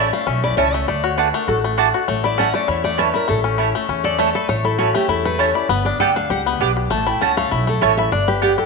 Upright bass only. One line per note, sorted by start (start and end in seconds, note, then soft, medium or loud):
0.27 0.53 B1 medium
0.58 0.83 C#2 medium
0.87 1.30 D2 medium
1.48 1.90 A1 medium
2.08 2.50 A1 medium
2.68 3.11 E2 medium
3.29 3.71 A1 loud
3.89 4.31 E2 medium
4.48 4.91 A1 loud
5.08 5.51 E2 medium
5.69 5.91 G1 medium
5.99 6.25 D2 medium
6.30 6.56 C#2 loud
6.60 6.86 B1 medium
6.90 7.12 A1 medium
7.21 7.47 C#2 medium
7.52 7.77 B1 loud
7.82 8.07 A1 medium
8.12 8.54 G1 loud